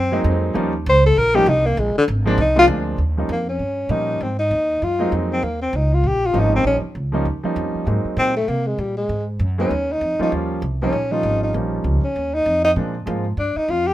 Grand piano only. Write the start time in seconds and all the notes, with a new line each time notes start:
0.12 F#3 G#3 A#3 C4 D#4
0.54 F3 G3 A#3 C#4 D#4
1.34 F3 G3 A#3 C#4 D#4
2.25 F3 G#3 A#3 C4 D4
2.55 F3 G#3 A#3 C4 D4
3.17 F3 G3 A#3 C#4 D#4
3.89 F3 G3 A#3 C#4 D#4
4.99 F#3 G#3 A#3 C4 D#4
6.33 F3 G3 A#3 C#4 D#4
7.12 F3 G3 A#3 C#4 D#4
7.43 F3 G3 A#3 C#4 D#4
7.86 F#3 G#3 A#3 C4 D#4
9.58 F#3 G#3 A#3 B3 D#4
10.19 F3 G3 A#3 C#4 F4
10.82 F3 G3 A#3 C#4 D#4
11.12 F3 G3 A#3 C#4 F4
11.54 F3 G3 A#3 C#4 D#4
12.76 F3 G#3 A#3 C4 D4
13.06 F3 G#3 A#3 C4 F4